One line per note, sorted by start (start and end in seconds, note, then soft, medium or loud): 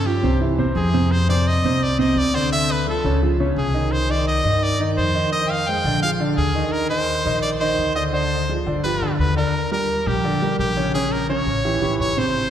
0.00 0.17 G2 medium
0.05 0.20 F3 medium
0.05 0.20 F4 medium
0.05 0.20 G4 medium
0.05 0.41 G4 medium
0.23 0.56 C2 medium
0.23 0.38 C3 medium
0.23 0.38 C4 medium
0.23 0.38 C5 medium
0.41 0.55 E3 medium
0.41 0.56 E4 medium
0.41 0.55 G4 medium
0.58 0.75 E2 medium
0.58 0.87 C3 medium
0.58 0.87 C4 medium
0.58 0.88 C5 medium
0.76 1.58 F2 loud
0.76 1.13 G#4 medium
0.94 1.22 C3 medium
0.94 1.23 C4 medium
0.94 1.23 C5 medium
1.12 1.29 C5 loud
1.29 1.57 C3 medium
1.29 1.58 C4 medium
1.29 1.58 C5 medium
1.29 1.49 D5 medium
1.48 1.85 D#5 loud
1.64 2.13 C2 medium
1.64 1.93 C3 medium
1.64 1.93 C4 medium
1.64 1.94 C5 medium
1.83 1.99 D5 medium
1.99 2.27 C3 medium
1.99 2.28 C4 medium
1.99 2.28 C5 medium
1.99 2.20 D#5 medium
2.16 2.98 D2 medium
2.16 2.37 D5 loud
2.34 2.48 D3 medium
2.34 2.49 D4 medium
2.34 2.52 C5 medium
2.34 2.49 D5 medium
2.52 2.81 D3 medium
2.52 2.81 D4 medium
2.52 2.81 D5 medium
2.52 2.73 E5 loud
2.71 2.88 B4 medium
2.87 3.01 F3 medium
2.87 3.01 F4 medium
2.87 3.01 A4 medium
2.87 3.21 A4 medium
3.04 3.53 C#2 medium
3.04 3.19 C#3 medium
3.04 3.19 C#4 medium
3.04 3.19 C#5 medium
3.22 3.37 F3 medium
3.22 3.37 F4 medium
3.22 3.37 G#4 medium
3.40 3.69 C#3 medium
3.40 3.69 C#4 medium
3.40 3.69 C#5 medium
3.56 4.39 C2 medium
3.56 3.94 G#4 medium
3.74 4.03 D#3 medium
3.74 4.03 D#4 medium
3.74 4.03 D#5 medium
3.92 4.12 C5 medium
4.09 4.38 D#3 medium
4.09 4.38 D#4 medium
4.09 4.27 D5 medium
4.09 4.39 D#5 medium
4.28 4.64 D#5 medium
4.44 4.94 G2 medium
4.44 4.73 D#3 medium
4.44 4.74 D#4 medium
4.44 4.74 D#5 medium
4.63 4.80 D5 medium
4.80 5.09 D#3 medium
4.80 5.09 D#4 medium
4.80 5.09 D#5 medium
4.97 5.80 F2 medium
4.97 5.30 C5 medium
5.15 5.29 D#3 medium
5.15 5.29 D#4 medium
5.15 5.30 D#5 medium
5.32 5.61 D#3 medium
5.32 5.61 D#4 medium
5.32 5.61 D#5 medium
5.32 5.48 D#5 loud
5.47 5.68 F5 medium
5.47 5.52 G5 medium
5.67 5.82 G#3 medium
5.67 5.83 G#4 medium
5.67 5.83 C5 medium
5.67 6.02 G5 loud
5.84 6.34 A#1 medium
5.84 6.00 D3 medium
5.84 6.00 D4 medium
5.84 6.00 D5 medium
6.03 6.18 F3 medium
6.03 6.18 F4 medium
6.03 6.18 G#4 medium
6.03 6.10 F5 loud
6.20 6.49 D3 medium
6.20 6.49 D4 medium
6.20 6.49 D5 medium
6.37 7.20 D#2 medium
6.37 6.74 G#4 medium
6.55 6.84 D#3 medium
6.55 6.84 D#4 medium
6.55 6.84 D#5 medium
6.72 6.89 A#4 medium
6.90 7.19 D#3 medium
6.90 7.19 D#4 medium
6.90 7.39 C5 loud
6.90 7.19 D#5 medium
7.26 7.75 A#1 medium
7.26 7.55 D#3 medium
7.26 7.55 D#4 medium
7.26 7.55 D#5 medium
7.42 7.50 D5 medium
7.60 7.89 D#3 medium
7.60 7.90 D#4 medium
7.60 7.93 C5 medium
7.60 7.90 D#5 medium
7.79 8.61 D2 medium
7.95 8.10 D3 medium
7.95 8.10 D4 medium
7.95 8.11 D5 medium
7.95 8.04 D#5 medium
8.13 8.42 D3 medium
8.13 8.42 D4 medium
8.13 8.54 C5 loud
8.13 8.42 D5 medium
8.49 8.63 F3 medium
8.49 8.64 F4 medium
8.49 8.64 G#4 medium
8.66 8.99 G1 medium
8.66 8.81 D3 medium
8.66 8.81 D4 medium
8.66 8.81 D5 medium
8.84 8.98 F3 medium
8.84 8.99 F4 medium
8.84 8.99 G4 medium
8.84 9.16 B4 medium
9.02 9.18 D2 medium
9.02 9.31 D3 medium
9.02 9.31 D4 medium
9.02 9.31 D5 medium
9.19 10.01 D#2 medium
9.19 9.35 B4 medium
9.36 9.51 D3 medium
9.36 9.51 D4 medium
9.36 9.69 A#4 medium
9.36 9.51 D5 medium
9.71 10.00 G3 medium
9.71 10.00 G4 medium
9.71 10.00 A#4 medium
9.71 10.09 A#4 medium
10.06 10.55 A#1 medium
10.06 10.21 G3 medium
10.06 10.59 G4 medium
10.06 10.21 G4 medium
10.06 10.22 A#4 medium
10.24 10.39 D3 medium
10.24 10.39 D4 medium
10.24 10.39 D5 medium
10.42 10.71 G3 medium
10.42 10.71 G4 medium
10.42 10.71 A#4 medium
10.59 11.41 A#1 medium
10.59 10.92 G4 medium
10.77 10.91 C#3 medium
10.77 10.91 C#4 medium
10.77 10.91 C#5 medium
10.94 11.23 C#3 medium
10.94 11.24 C#4 medium
10.94 11.14 G#4 medium
10.94 11.24 C#5 medium
11.12 11.29 A#4 medium
11.29 11.58 C#3 medium
11.29 11.58 C#4 medium
11.29 11.96 C#5 medium
11.29 11.58 C#5 medium
11.46 11.79 A1 medium
11.65 11.79 E3 medium
11.65 11.79 E4 medium
11.65 11.79 G4 medium
11.82 11.98 A1 medium
11.82 12.11 E3 medium
11.82 12.11 E4 medium
11.82 12.11 G4 medium
12.00 12.50 G#1 medium
12.00 12.20 C#5 loud
12.17 12.46 C3 medium
12.17 12.46 C4 medium
12.17 12.46 C5 medium
12.17 12.50 C5 medium